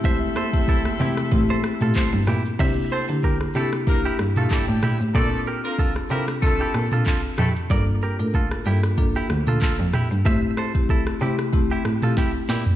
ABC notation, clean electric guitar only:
X:1
M:4/4
L:1/16
Q:"Swing 16ths" 1/4=94
K:Cmix
V:1 name="Clean electric guitar"
[ce] z [Ac] z [EA] z [EG] z2 [Ac] z [FA] [Ac] z [EG] z | [ce] z [Ac] z [GB] z [EG] z2 [EG] z [FA] [EA] z [EG] z | [Bd] z [GB] z [FA] z [EG] z2 [EG] z [FA] [FA] z [EG] z | [Bd] z [GB] z [FA] z [EG] z2 [EG] z [FA] [FA] z [EG] z |
[ce] z [Ac] z [EA] z [EG] z2 [EG] z [FA] [EG] z [EG] z |]